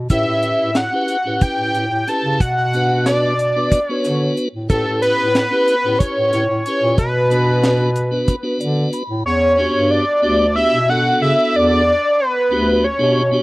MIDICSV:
0, 0, Header, 1, 5, 480
1, 0, Start_track
1, 0, Tempo, 654308
1, 78, Time_signature, 7, 3, 24, 8
1, 5117, Tempo, 648649
1, 9891, End_track
2, 0, Start_track
2, 0, Title_t, "Analog synth lead"
2, 0, Program_c, 0, 81
2, 77, Note_on_c, 0, 76, 91
2, 560, Note_on_c, 0, 78, 90
2, 571, Note_off_c, 0, 76, 0
2, 1042, Note_off_c, 0, 78, 0
2, 1045, Note_on_c, 0, 79, 93
2, 1529, Note_on_c, 0, 81, 94
2, 1540, Note_off_c, 0, 79, 0
2, 1766, Note_on_c, 0, 78, 108
2, 1777, Note_off_c, 0, 81, 0
2, 2242, Note_off_c, 0, 78, 0
2, 2246, Note_on_c, 0, 74, 85
2, 2855, Note_off_c, 0, 74, 0
2, 2855, Note_on_c, 0, 73, 85
2, 3176, Note_off_c, 0, 73, 0
2, 3444, Note_on_c, 0, 69, 91
2, 3667, Note_off_c, 0, 69, 0
2, 3683, Note_on_c, 0, 71, 87
2, 4392, Note_on_c, 0, 73, 101
2, 4403, Note_off_c, 0, 71, 0
2, 4876, Note_off_c, 0, 73, 0
2, 4883, Note_on_c, 0, 73, 89
2, 5104, Note_off_c, 0, 73, 0
2, 5126, Note_on_c, 0, 71, 93
2, 6297, Note_off_c, 0, 71, 0
2, 6806, Note_on_c, 0, 73, 90
2, 7286, Note_on_c, 0, 74, 84
2, 7297, Note_off_c, 0, 73, 0
2, 7765, Note_off_c, 0, 74, 0
2, 7769, Note_on_c, 0, 76, 106
2, 8018, Note_on_c, 0, 78, 97
2, 8029, Note_off_c, 0, 76, 0
2, 8252, Note_off_c, 0, 78, 0
2, 8258, Note_on_c, 0, 76, 91
2, 8510, Note_on_c, 0, 74, 111
2, 8521, Note_off_c, 0, 76, 0
2, 8982, Note_on_c, 0, 71, 94
2, 8993, Note_off_c, 0, 74, 0
2, 9458, Note_on_c, 0, 73, 77
2, 9469, Note_off_c, 0, 71, 0
2, 9891, Note_off_c, 0, 73, 0
2, 9891, End_track
3, 0, Start_track
3, 0, Title_t, "Tonewheel organ"
3, 0, Program_c, 1, 16
3, 80, Note_on_c, 1, 61, 55
3, 82, Note_on_c, 1, 64, 52
3, 82, Note_on_c, 1, 67, 48
3, 87, Note_on_c, 1, 71, 65
3, 517, Note_off_c, 1, 61, 0
3, 519, Note_off_c, 1, 64, 0
3, 519, Note_off_c, 1, 67, 0
3, 521, Note_off_c, 1, 71, 0
3, 679, Note_on_c, 1, 61, 72
3, 683, Note_on_c, 1, 64, 66
3, 688, Note_on_c, 1, 67, 70
3, 697, Note_on_c, 1, 71, 74
3, 855, Note_off_c, 1, 61, 0
3, 857, Note_off_c, 1, 64, 0
3, 860, Note_off_c, 1, 67, 0
3, 864, Note_off_c, 1, 71, 0
3, 919, Note_on_c, 1, 61, 55
3, 927, Note_on_c, 1, 64, 53
3, 928, Note_on_c, 1, 67, 49
3, 932, Note_on_c, 1, 71, 63
3, 1358, Note_off_c, 1, 61, 0
3, 1362, Note_off_c, 1, 64, 0
3, 1363, Note_off_c, 1, 67, 0
3, 1365, Note_off_c, 1, 71, 0
3, 1523, Note_on_c, 1, 61, 62
3, 1528, Note_on_c, 1, 64, 54
3, 1529, Note_on_c, 1, 67, 58
3, 1532, Note_on_c, 1, 71, 69
3, 1763, Note_off_c, 1, 61, 0
3, 1766, Note_off_c, 1, 64, 0
3, 1767, Note_off_c, 1, 67, 0
3, 1768, Note_off_c, 1, 71, 0
3, 2010, Note_on_c, 1, 59, 64
3, 2015, Note_on_c, 1, 62, 58
3, 2018, Note_on_c, 1, 66, 57
3, 2024, Note_on_c, 1, 71, 65
3, 2444, Note_off_c, 1, 59, 0
3, 2447, Note_off_c, 1, 62, 0
3, 2448, Note_off_c, 1, 66, 0
3, 2451, Note_off_c, 1, 71, 0
3, 2611, Note_on_c, 1, 59, 65
3, 2614, Note_on_c, 1, 62, 59
3, 2619, Note_on_c, 1, 66, 53
3, 2621, Note_on_c, 1, 71, 71
3, 2783, Note_off_c, 1, 59, 0
3, 2784, Note_off_c, 1, 62, 0
3, 2787, Note_off_c, 1, 66, 0
3, 2787, Note_off_c, 1, 71, 0
3, 2855, Note_on_c, 1, 59, 84
3, 2859, Note_on_c, 1, 62, 78
3, 2864, Note_on_c, 1, 66, 77
3, 2866, Note_on_c, 1, 71, 91
3, 3287, Note_off_c, 1, 59, 0
3, 3289, Note_off_c, 1, 62, 0
3, 3291, Note_off_c, 1, 66, 0
3, 3292, Note_off_c, 1, 71, 0
3, 3441, Note_on_c, 1, 61, 64
3, 3445, Note_on_c, 1, 64, 51
3, 3450, Note_on_c, 1, 67, 53
3, 3454, Note_on_c, 1, 71, 62
3, 3879, Note_off_c, 1, 61, 0
3, 3881, Note_off_c, 1, 64, 0
3, 3884, Note_off_c, 1, 67, 0
3, 3885, Note_off_c, 1, 71, 0
3, 4041, Note_on_c, 1, 61, 76
3, 4047, Note_on_c, 1, 64, 69
3, 4054, Note_on_c, 1, 67, 71
3, 4060, Note_on_c, 1, 71, 86
3, 4216, Note_off_c, 1, 61, 0
3, 4220, Note_off_c, 1, 64, 0
3, 4223, Note_off_c, 1, 67, 0
3, 4226, Note_off_c, 1, 71, 0
3, 4291, Note_on_c, 1, 61, 55
3, 4298, Note_on_c, 1, 64, 53
3, 4299, Note_on_c, 1, 67, 56
3, 4302, Note_on_c, 1, 71, 63
3, 4722, Note_off_c, 1, 61, 0
3, 4726, Note_off_c, 1, 64, 0
3, 4726, Note_off_c, 1, 67, 0
3, 4728, Note_off_c, 1, 71, 0
3, 4892, Note_on_c, 1, 61, 61
3, 4893, Note_on_c, 1, 64, 56
3, 4903, Note_on_c, 1, 67, 61
3, 4906, Note_on_c, 1, 71, 64
3, 5125, Note_off_c, 1, 61, 0
3, 5126, Note_off_c, 1, 64, 0
3, 5131, Note_off_c, 1, 67, 0
3, 5133, Note_off_c, 1, 71, 0
3, 5359, Note_on_c, 1, 59, 65
3, 5369, Note_on_c, 1, 62, 60
3, 5369, Note_on_c, 1, 66, 63
3, 5376, Note_on_c, 1, 71, 69
3, 5798, Note_off_c, 1, 59, 0
3, 5803, Note_off_c, 1, 66, 0
3, 5804, Note_off_c, 1, 62, 0
3, 5807, Note_off_c, 1, 71, 0
3, 5958, Note_on_c, 1, 59, 75
3, 5964, Note_on_c, 1, 62, 68
3, 5964, Note_on_c, 1, 66, 68
3, 5971, Note_on_c, 1, 71, 78
3, 6136, Note_off_c, 1, 59, 0
3, 6139, Note_off_c, 1, 62, 0
3, 6139, Note_off_c, 1, 66, 0
3, 6142, Note_off_c, 1, 71, 0
3, 6193, Note_on_c, 1, 59, 83
3, 6194, Note_on_c, 1, 62, 74
3, 6201, Note_on_c, 1, 66, 77
3, 6208, Note_on_c, 1, 71, 86
3, 6322, Note_on_c, 1, 74, 65
3, 6547, Note_off_c, 1, 74, 0
3, 6565, Note_on_c, 1, 83, 56
3, 6636, Note_off_c, 1, 59, 0
3, 6637, Note_off_c, 1, 62, 0
3, 6640, Note_off_c, 1, 66, 0
3, 6643, Note_off_c, 1, 71, 0
3, 6789, Note_off_c, 1, 83, 0
3, 7040, Note_on_c, 1, 59, 72
3, 7045, Note_on_c, 1, 62, 58
3, 7052, Note_on_c, 1, 66, 63
3, 7054, Note_on_c, 1, 67, 73
3, 7392, Note_off_c, 1, 59, 0
3, 7395, Note_off_c, 1, 62, 0
3, 7398, Note_off_c, 1, 66, 0
3, 7399, Note_off_c, 1, 67, 0
3, 7519, Note_on_c, 1, 59, 63
3, 7526, Note_on_c, 1, 62, 65
3, 7527, Note_on_c, 1, 66, 66
3, 7535, Note_on_c, 1, 67, 74
3, 7697, Note_off_c, 1, 59, 0
3, 7700, Note_off_c, 1, 62, 0
3, 7701, Note_off_c, 1, 66, 0
3, 7705, Note_off_c, 1, 67, 0
3, 7762, Note_on_c, 1, 59, 61
3, 7769, Note_on_c, 1, 62, 57
3, 7770, Note_on_c, 1, 66, 65
3, 7777, Note_on_c, 1, 67, 73
3, 7938, Note_off_c, 1, 59, 0
3, 7942, Note_off_c, 1, 62, 0
3, 7942, Note_off_c, 1, 66, 0
3, 7946, Note_off_c, 1, 67, 0
3, 8011, Note_on_c, 1, 59, 75
3, 8016, Note_on_c, 1, 62, 66
3, 8021, Note_on_c, 1, 66, 66
3, 8028, Note_on_c, 1, 69, 77
3, 8707, Note_off_c, 1, 59, 0
3, 8709, Note_off_c, 1, 62, 0
3, 8711, Note_off_c, 1, 66, 0
3, 8715, Note_off_c, 1, 69, 0
3, 9212, Note_on_c, 1, 59, 71
3, 9218, Note_on_c, 1, 62, 67
3, 9222, Note_on_c, 1, 66, 62
3, 9223, Note_on_c, 1, 67, 74
3, 9469, Note_off_c, 1, 59, 0
3, 9472, Note_off_c, 1, 62, 0
3, 9474, Note_off_c, 1, 66, 0
3, 9475, Note_off_c, 1, 67, 0
3, 9567, Note_on_c, 1, 59, 77
3, 9568, Note_on_c, 1, 62, 76
3, 9574, Note_on_c, 1, 66, 80
3, 9583, Note_on_c, 1, 67, 95
3, 9740, Note_off_c, 1, 59, 0
3, 9740, Note_off_c, 1, 62, 0
3, 9743, Note_off_c, 1, 66, 0
3, 9747, Note_off_c, 1, 67, 0
3, 9808, Note_on_c, 1, 59, 74
3, 9817, Note_on_c, 1, 62, 61
3, 9822, Note_on_c, 1, 66, 70
3, 9822, Note_on_c, 1, 67, 80
3, 9891, Note_off_c, 1, 59, 0
3, 9891, Note_off_c, 1, 62, 0
3, 9891, Note_off_c, 1, 66, 0
3, 9891, Note_off_c, 1, 67, 0
3, 9891, End_track
4, 0, Start_track
4, 0, Title_t, "Bass clarinet"
4, 0, Program_c, 2, 71
4, 74, Note_on_c, 2, 45, 85
4, 174, Note_off_c, 2, 45, 0
4, 202, Note_on_c, 2, 45, 75
4, 398, Note_off_c, 2, 45, 0
4, 447, Note_on_c, 2, 45, 70
4, 641, Note_off_c, 2, 45, 0
4, 922, Note_on_c, 2, 45, 66
4, 1020, Note_off_c, 2, 45, 0
4, 1158, Note_on_c, 2, 45, 61
4, 1258, Note_off_c, 2, 45, 0
4, 1274, Note_on_c, 2, 45, 78
4, 1376, Note_off_c, 2, 45, 0
4, 1402, Note_on_c, 2, 45, 77
4, 1501, Note_off_c, 2, 45, 0
4, 1645, Note_on_c, 2, 49, 82
4, 1743, Note_off_c, 2, 49, 0
4, 1766, Note_on_c, 2, 47, 88
4, 2748, Note_off_c, 2, 47, 0
4, 2978, Note_on_c, 2, 50, 88
4, 3169, Note_off_c, 2, 50, 0
4, 3334, Note_on_c, 2, 45, 73
4, 3428, Note_off_c, 2, 45, 0
4, 3449, Note_on_c, 2, 45, 83
4, 3545, Note_off_c, 2, 45, 0
4, 3573, Note_on_c, 2, 45, 68
4, 3766, Note_off_c, 2, 45, 0
4, 3819, Note_on_c, 2, 45, 80
4, 4009, Note_off_c, 2, 45, 0
4, 4298, Note_on_c, 2, 45, 76
4, 4390, Note_off_c, 2, 45, 0
4, 4529, Note_on_c, 2, 45, 73
4, 4624, Note_off_c, 2, 45, 0
4, 4648, Note_on_c, 2, 45, 93
4, 4743, Note_off_c, 2, 45, 0
4, 4764, Note_on_c, 2, 45, 80
4, 4861, Note_off_c, 2, 45, 0
4, 5003, Note_on_c, 2, 46, 83
4, 5100, Note_off_c, 2, 46, 0
4, 5122, Note_on_c, 2, 47, 107
4, 6107, Note_off_c, 2, 47, 0
4, 6322, Note_on_c, 2, 50, 90
4, 6519, Note_off_c, 2, 50, 0
4, 6687, Note_on_c, 2, 45, 76
4, 6784, Note_off_c, 2, 45, 0
4, 6802, Note_on_c, 2, 40, 86
4, 7098, Note_off_c, 2, 40, 0
4, 7169, Note_on_c, 2, 43, 79
4, 7364, Note_off_c, 2, 43, 0
4, 7531, Note_on_c, 2, 38, 89
4, 7823, Note_off_c, 2, 38, 0
4, 7893, Note_on_c, 2, 47, 72
4, 8184, Note_off_c, 2, 47, 0
4, 8248, Note_on_c, 2, 49, 85
4, 8345, Note_off_c, 2, 49, 0
4, 8499, Note_on_c, 2, 40, 88
4, 8787, Note_off_c, 2, 40, 0
4, 9214, Note_on_c, 2, 38, 88
4, 9504, Note_off_c, 2, 38, 0
4, 9576, Note_on_c, 2, 47, 74
4, 9865, Note_off_c, 2, 47, 0
4, 9891, End_track
5, 0, Start_track
5, 0, Title_t, "Drums"
5, 72, Note_on_c, 9, 42, 79
5, 74, Note_on_c, 9, 36, 86
5, 145, Note_off_c, 9, 42, 0
5, 147, Note_off_c, 9, 36, 0
5, 313, Note_on_c, 9, 42, 46
5, 386, Note_off_c, 9, 42, 0
5, 550, Note_on_c, 9, 38, 89
5, 550, Note_on_c, 9, 42, 69
5, 624, Note_off_c, 9, 38, 0
5, 624, Note_off_c, 9, 42, 0
5, 793, Note_on_c, 9, 42, 60
5, 866, Note_off_c, 9, 42, 0
5, 1035, Note_on_c, 9, 42, 68
5, 1039, Note_on_c, 9, 36, 94
5, 1109, Note_off_c, 9, 42, 0
5, 1112, Note_off_c, 9, 36, 0
5, 1280, Note_on_c, 9, 42, 48
5, 1353, Note_off_c, 9, 42, 0
5, 1523, Note_on_c, 9, 38, 30
5, 1523, Note_on_c, 9, 42, 49
5, 1596, Note_off_c, 9, 38, 0
5, 1596, Note_off_c, 9, 42, 0
5, 1763, Note_on_c, 9, 36, 95
5, 1765, Note_on_c, 9, 42, 70
5, 1836, Note_off_c, 9, 36, 0
5, 1838, Note_off_c, 9, 42, 0
5, 2005, Note_on_c, 9, 42, 46
5, 2079, Note_off_c, 9, 42, 0
5, 2245, Note_on_c, 9, 38, 88
5, 2245, Note_on_c, 9, 42, 64
5, 2318, Note_off_c, 9, 38, 0
5, 2318, Note_off_c, 9, 42, 0
5, 2487, Note_on_c, 9, 42, 53
5, 2561, Note_off_c, 9, 42, 0
5, 2726, Note_on_c, 9, 36, 90
5, 2726, Note_on_c, 9, 42, 76
5, 2800, Note_off_c, 9, 36, 0
5, 2800, Note_off_c, 9, 42, 0
5, 2967, Note_on_c, 9, 38, 32
5, 2967, Note_on_c, 9, 42, 52
5, 3040, Note_off_c, 9, 38, 0
5, 3040, Note_off_c, 9, 42, 0
5, 3207, Note_on_c, 9, 42, 47
5, 3281, Note_off_c, 9, 42, 0
5, 3445, Note_on_c, 9, 42, 71
5, 3446, Note_on_c, 9, 36, 98
5, 3519, Note_off_c, 9, 42, 0
5, 3520, Note_off_c, 9, 36, 0
5, 3686, Note_on_c, 9, 42, 51
5, 3760, Note_off_c, 9, 42, 0
5, 3925, Note_on_c, 9, 38, 98
5, 3925, Note_on_c, 9, 42, 72
5, 3998, Note_off_c, 9, 38, 0
5, 3998, Note_off_c, 9, 42, 0
5, 4164, Note_on_c, 9, 42, 60
5, 4238, Note_off_c, 9, 42, 0
5, 4404, Note_on_c, 9, 36, 94
5, 4404, Note_on_c, 9, 42, 83
5, 4478, Note_off_c, 9, 36, 0
5, 4478, Note_off_c, 9, 42, 0
5, 4643, Note_on_c, 9, 38, 27
5, 4643, Note_on_c, 9, 42, 52
5, 4716, Note_off_c, 9, 38, 0
5, 4716, Note_off_c, 9, 42, 0
5, 4884, Note_on_c, 9, 42, 51
5, 4957, Note_off_c, 9, 42, 0
5, 5120, Note_on_c, 9, 42, 71
5, 5121, Note_on_c, 9, 36, 94
5, 5194, Note_off_c, 9, 42, 0
5, 5195, Note_off_c, 9, 36, 0
5, 5366, Note_on_c, 9, 42, 49
5, 5440, Note_off_c, 9, 42, 0
5, 5605, Note_on_c, 9, 38, 97
5, 5605, Note_on_c, 9, 42, 72
5, 5679, Note_off_c, 9, 38, 0
5, 5679, Note_off_c, 9, 42, 0
5, 5843, Note_on_c, 9, 42, 57
5, 5917, Note_off_c, 9, 42, 0
5, 6082, Note_on_c, 9, 42, 73
5, 6083, Note_on_c, 9, 36, 92
5, 6156, Note_off_c, 9, 42, 0
5, 6157, Note_off_c, 9, 36, 0
5, 6324, Note_on_c, 9, 42, 48
5, 6398, Note_off_c, 9, 42, 0
5, 6562, Note_on_c, 9, 42, 51
5, 6636, Note_off_c, 9, 42, 0
5, 9891, End_track
0, 0, End_of_file